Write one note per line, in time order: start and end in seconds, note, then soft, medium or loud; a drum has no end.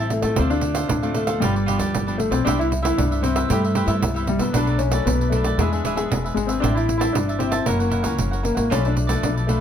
0.00 0.19 A1 medium
0.00 0.35 E3 soft
0.00 0.21 G3 medium
0.00 0.21 C4 medium
0.00 0.21 E4 medium
0.00 0.11 C5 soft
0.00 0.12 E5 soft
0.00 0.11 A5 medium
0.10 0.20 A3 medium
0.10 muted cavaquinho stroke soft
0.10 pandeiro medium
0.22 0.35 A2 medium
0.22 0.37 A3 medium
0.22 0.62 A3 medium
0.22 0.62 C4 medium
0.22 0.63 F4 medium
0.22 0.37 C5 soft
0.22 0.37 E5 soft
0.22 0.36 A5 soft
0.22 pandeiro medium
0.36 0.83 D2 loud
0.36 0.88 D3 medium
0.36 0.51 C4 medium
0.36 0.50 D4 medium
0.36 0.50 A4 medium
0.36 0.51 C5 medium
0.36 0.49 F5 medium
0.36 pandeiro medium
0.50 0.87 D4 loud
0.50 0.62 A4 soft
0.50 0.62 C5 soft
0.50 0.63 F5 soft
0.50 pandeiro soft
0.61 0.88 A3 medium
0.61 0.88 C4 medium
0.61 0.89 F4 medium
0.61 muted cavaquinho stroke soft
0.61 pandeiro medium
0.74 1.02 A4 soft
0.74 1.02 C5 medium
0.74 1.01 F5 medium
0.74 pandeiro medium
0.89 1.35 D2 medium
0.89 1.39 A2 medium
0.89 1.16 D4 medium
0.89 pandeiro medium
1.03 1.25 A3 medium
1.03 1.25 C4 medium
1.03 1.25 F4 medium
1.03 1.14 A4 soft
1.03 1.15 C5 soft
1.03 1.15 F5 soft
1.03 pandeiro soft
1.14 1.42 A3 medium
1.14 1.28 D4 soft
1.14 1.27 A4 medium
1.14 1.27 C5 soft
1.14 1.26 F5 medium
1.14 pandeiro medium
1.27 1.63 F3 medium
1.27 1.63 B3 medium
1.27 1.64 D4 medium
1.27 1.41 A4 medium
1.27 1.41 C5 medium
1.27 1.40 F5 medium
1.27 pandeiro medium
1.40 1.76 G1 medium
1.40 1.92 G2 medium
1.40 2.22 G3 medium
1.40 1.54 F4 medium
1.40 1.54 G4 medium
1.40 1.54 B4 medium
1.40 1.54 D5 medium
1.40 pandeiro medium
1.55 1.66 G4 soft
1.55 1.67 B4 soft
1.55 1.67 D5 soft
1.55 pandeiro soft
1.66 2.03 F3 medium
1.66 2.03 B3 medium
1.66 2.03 D4 medium
1.66 1.79 F4 medium
1.66 1.79 G4 medium
1.66 1.79 B4 medium
1.66 1.78 D5 medium
1.66 pandeiro medium
1.79 1.92 D2 medium
1.79 2.06 G4 medium
1.79 2.06 B4 medium
1.79 2.05 D5 medium
1.79 pandeiro medium
1.94 2.28 G1 medium
1.94 2.44 D3 soft
1.94 pandeiro medium
2.06 2.42 F3 medium
2.06 2.42 B3 medium
2.06 2.42 D4 medium
2.06 2.18 G4 soft
2.06 2.18 B4 soft
2.06 2.18 D5 medium
2.06 pandeiro soft
2.18 2.33 A3 medium
2.18 muted cavaquinho stroke soft
2.18 pandeiro medium
2.31 2.43 B1 medium
2.31 2.46 C4 medium
2.31 2.44 G4 soft
2.31 2.45 B4 soft
2.31 2.44 D5 soft
2.31 pandeiro medium
2.45 2.91 C2 loud
2.45 2.95 C3 medium
2.45 2.55 G3 medium
2.45 2.55 B3 medium
2.45 2.59 D4 loud
2.45 2.55 E4 medium
2.45 2.58 G4 medium
2.45 2.59 B4 medium
2.45 2.58 C5 medium
2.45 2.59 E5 medium
2.45 pandeiro medium
2.58 2.81 G3 medium
2.58 2.81 B3 medium
2.58 2.81 E4 medium
2.58 2.65 E4 medium
2.58 2.70 B4 soft
2.58 2.70 C5 soft
2.58 2.71 E5 soft
2.58 pandeiro soft
2.71 muted cavaquinho stroke soft
2.71 pandeiro medium
2.82 3.19 G3 medium
2.82 3.19 B3 medium
2.82 2.98 E4 medium
2.82 3.19 E4 medium
2.82 3.10 B4 medium
2.82 3.10 C5 medium
2.82 3.09 E5 medium
2.82 pandeiro medium
2.96 3.43 C2 medium
2.96 3.47 G2 medium
2.96 3.25 D4 medium
2.96 pandeiro medium
3.11 3.23 B4 soft
3.11 3.22 C5 soft
3.11 3.23 E5 soft
3.11 pandeiro soft
3.21 3.44 G3 medium
3.21 3.45 B3 medium
3.21 3.51 C4 medium
3.21 3.45 E4 medium
3.21 3.35 G4 medium
3.21 3.36 B4 medium
3.21 3.36 C5 soft
3.21 pandeiro medium
3.25 3.34 E5 medium
3.36 3.49 B4 medium
3.36 3.50 C5 medium
3.36 3.49 E5 medium
3.36 pandeiro medium
3.48 3.84 G2 loud
3.48 3.99 C3 medium
3.48 3.84 G3 medium
3.48 3.99 A3 medium
3.48 3.84 B3 medium
3.48 3.84 E4 medium
3.48 3.63 G4 medium
3.48 pandeiro medium
3.52 3.64 B4 medium
3.52 3.63 C5 medium
3.52 3.64 E5 medium
3.64 3.75 B4 soft
3.64 3.75 C5 soft
3.64 3.76 E5 medium
3.64 pandeiro soft
3.75 3.88 G4 medium
3.75 3.88 B4 medium
3.75 3.88 C5 medium
3.75 3.87 E5 medium
3.75 pandeiro medium
3.86 3.99 G2 medium
3.86 4.09 G3 medium
3.86 4.10 B3 medium
3.86 4.10 E4 medium
3.86 4.15 B4 medium
3.86 4.14 E5 medium
3.86 pandeiro medium
3.90 4.15 C5 medium
4.00 4.36 C2 medium
4.00 4.51 G2 medium
4.00 pandeiro medium
4.14 4.37 G3 medium
4.14 4.37 B3 medium
4.14 4.37 E4 medium
4.14 4.28 B4 soft
4.14 4.28 E5 medium
4.14 pandeiro soft
4.19 4.27 C5 soft
4.27 4.42 G3 medium
4.27 muted cavaquinho stroke soft
4.27 pandeiro medium
4.38 4.51 C3 medium
4.38 4.62 F#3 medium
4.38 4.62 A3 medium
4.38 4.54 B3 medium
4.38 4.62 D4 medium
4.38 4.53 B4 soft
4.38 4.54 C5 soft
4.38 4.53 E5 soft
4.38 pandeiro medium
4.52 4.98 B1 loud
4.52 5.03 B2 medium
4.52 4.81 D4 medium
4.52 4.67 D4 medium
4.52 4.67 A4 medium
4.52 pandeiro medium
4.57 4.68 B4 medium
4.57 4.68 D5 medium
4.66 4.89 F#3 medium
4.66 4.89 A3 medium
4.66 4.89 D4 medium
4.66 4.80 B4 soft
4.66 4.80 D5 soft
4.66 pandeiro soft
4.71 4.80 A4 soft
4.78 5.06 C#4 medium
4.78 muted cavaquinho stroke soft
4.78 pandeiro medium
4.90 5.27 F#3 medium
4.90 5.27 A3 medium
4.90 5.27 D4 medium
4.90 5.19 B4 medium
4.90 5.18 D5 medium
4.90 pandeiro medium
4.95 5.19 A4 medium
5.05 5.50 B1 medium
5.05 5.56 F#2 medium
5.05 5.33 B3 medium
5.05 pandeiro medium
5.21 5.33 A4 soft
5.21 5.33 B4 soft
5.21 5.32 D5 soft
5.21 pandeiro soft
5.30 5.56 F#3 soft
5.30 5.58 A3 medium
5.30 5.56 A3 medium
5.30 5.56 D4 soft
5.30 5.45 D4 soft
5.30 pandeiro medium
5.34 5.46 A4 soft
5.34 5.45 B4 medium
5.34 5.44 D5 medium
5.44 5.58 A4 soft
5.44 5.58 B4 medium
5.44 5.57 D5 medium
5.44 pandeiro medium
5.58 5.80 E2 medium
5.58 6.08 E3 medium
5.58 6.33 G#3 medium
5.58 5.67 B3 soft
5.58 5.71 D4 medium
5.58 5.68 D4 soft
5.58 5.68 G#4 medium
5.58 5.71 G#4 medium
5.58 5.72 B4 medium
5.58 5.72 E5 medium
5.58 pandeiro medium
5.72 5.94 B3 medium
5.72 5.94 D4 medium
5.72 5.94 G#4 medium
5.72 5.84 G#4 soft
5.72 5.85 B4 soft
5.72 5.85 E5 soft
5.72 pandeiro soft
5.83 6.07 D1 medium
5.83 5.97 D4 medium
5.83 5.97 G#4 medium
5.83 5.96 B4 medium
5.83 5.95 E5 medium
5.83 pandeiro medium
5.96 6.32 B3 medium
5.96 6.32 D4 medium
5.96 6.32 G#4 medium
5.96 6.23 G#4 medium
5.96 6.23 B4 medium
5.96 6.22 E5 medium
5.96 pandeiro medium
6.10 6.34 E1 medium
6.10 6.60 B2 medium
6.10 pandeiro medium
6.24 6.35 G#4 soft
6.24 6.36 B4 soft
6.24 6.36 E5 soft
6.24 pandeiro soft
6.34 6.60 G#1 medium
6.34 6.48 G#3 medium
6.34 6.60 B3 medium
6.34 6.60 D4 medium
6.34 6.61 G#4 medium
6.34 muted cavaquinho stroke soft
6.34 pandeiro medium
6.46 6.62 C4 medium
6.46 6.62 B4 soft
6.46 6.61 E5 soft
6.46 pandeiro medium
6.51 6.62 G#4 soft
6.60 7.07 A1 loud
6.60 7.12 A2 medium
6.60 6.70 G3 medium
6.60 6.70 C4 medium
6.60 6.75 D4 medium
6.60 6.70 E4 medium
6.60 6.74 G4 medium
6.60 6.74 C5 medium
6.60 6.75 E5 medium
6.60 6.74 A5 medium
6.60 pandeiro medium
6.74 6.98 G3 medium
6.74 6.98 C4 medium
6.74 6.96 E4 medium
6.74 6.98 E4 medium
6.74 6.86 C5 soft
6.74 6.87 E5 soft
6.74 6.87 A5 soft
6.74 pandeiro soft
6.87 muted cavaquinho stroke soft
6.87 pandeiro medium
6.98 7.36 G3 medium
6.98 7.36 C4 medium
6.98 7.13 E4 medium
6.98 7.36 E4 medium
6.98 7.26 E5 medium
6.98 7.26 A5 medium
6.98 pandeiro medium
7.02 7.27 C5 medium
7.13 7.59 G1 medium
7.13 7.64 E3 medium
7.13 7.41 D4 medium
7.13 pandeiro medium
7.28 7.39 C5 soft
7.28 7.40 E5 soft
7.28 7.40 A5 soft
7.28 pandeiro soft
7.39 7.57 G3 soft
7.39 7.64 C4 medium
7.39 7.57 C4 medium
7.39 7.57 E4 medium
7.39 7.52 G4 soft
7.39 7.52 C5 medium
7.39 7.51 E5 medium
7.39 7.50 A5 soft
7.39 pandeiro medium
7.51 7.65 C5 medium
7.51 7.65 E5 medium
7.51 7.65 A5 medium
7.51 pandeiro medium
7.66 8.00 F#1 medium
7.66 8.16 F#2 medium
7.66 7.75 E3 medium
7.66 8.15 A#3 medium
7.66 7.75 A#3 medium
7.66 7.75 C#4 medium
7.66 7.78 E4 medium
7.66 7.79 A#4 medium
7.66 7.79 C#5 medium
7.66 7.78 F#5 medium
7.66 pandeiro medium
7.79 8.02 E3 medium
7.79 8.02 A#3 medium
7.79 8.02 C#4 medium
7.79 7.90 A#4 soft
7.79 7.90 C#5 soft
7.79 7.91 F#5 soft
7.79 pandeiro soft
7.90 8.04 E4 medium
7.90 8.03 A#4 medium
7.90 8.03 C#5 medium
7.90 8.01 F#5 medium
7.90 pandeiro medium
8.03 8.16 C#2 medium
8.03 8.40 E3 medium
8.03 8.40 A#3 medium
8.03 8.40 C#4 medium
8.03 8.30 A#4 medium
8.03 8.30 C#5 medium
8.03 8.29 F#5 medium
8.03 pandeiro medium
8.18 8.52 F#1 medium
8.18 8.68 C#3 medium
8.18 pandeiro medium
8.31 8.43 A#4 soft
8.31 8.43 C#5 soft
8.31 8.44 F#5 medium
8.31 pandeiro soft
8.43 8.68 E3 medium
8.43 8.68 A#3 medium
8.43 8.55 A#3 medium
8.43 8.68 C#4 medium
8.43 muted cavaquinho stroke soft
8.43 pandeiro medium
8.55 8.68 G#1 medium
8.55 8.71 A#3 medium
8.55 8.70 A#4 soft
8.55 8.69 C#5 soft
8.55 8.68 F#5 soft
8.55 pandeiro medium
8.70 9.15 B1 loud
8.70 9.20 B2 medium
8.70 8.79 F3 medium
8.70 8.79 A3 medium
8.70 8.85 C#4 medium
8.70 8.79 D4 medium
8.70 8.82 F4 medium
8.70 8.83 A4 medium
8.70 8.83 B4 medium
8.70 8.82 D5 medium
8.70 pandeiro medium
8.83 9.06 F3 medium
8.83 9.06 A3 medium
8.83 9.07 D4 medium
8.83 9.21 D4 medium
8.83 8.95 A4 soft
8.83 8.95 B4 soft
8.83 8.95 D5 medium
8.83 pandeiro soft
8.95 muted cavaquinho stroke soft
8.95 pandeiro medium
9.07 9.44 F3 medium
9.07 9.44 A3 medium
9.07 9.45 D4 medium
9.07 9.35 A4 medium
9.07 9.34 B4 medium
9.07 9.34 D5 medium
9.07 pandeiro medium
9.23 9.61 B1 medium
9.23 9.61 B2 medium
9.23 9.29 D4 medium
9.23 pandeiro medium
9.36 9.47 A4 soft
9.36 9.48 B4 soft
9.36 9.48 D5 soft
9.36 pandeiro soft
9.47 9.61 F3 soft
9.47 9.61 A3 medium
9.47 9.61 D4 medium
9.47 9.61 F4 soft
9.47 9.61 A4 medium
9.47 9.60 B4 medium
9.47 9.59 D5 medium
9.47 pandeiro medium